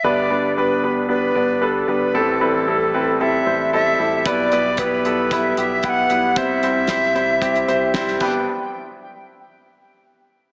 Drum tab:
CC |----------------|----------------|----------------|--------------x-|
HH |----------------|----------------|x-x-x-x-x-x-x-x-|x-x-x-x-xxx-x---|
SD |----------------|----------------|----------------|----o-------oo--|
BD |----------------|----------------|o---o---o---o---|o---o---o---o-o-|

CC |----------------|
HH |----------------|
SD |----------------|
BD |----------------|